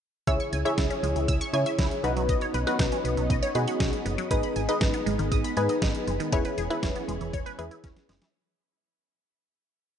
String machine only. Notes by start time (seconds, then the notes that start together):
0.27 C#3 C#4 E4 G#4
2.04 B3 D#4
4.31 G#3 B3 D#4
6.33 E3 C#4 G#4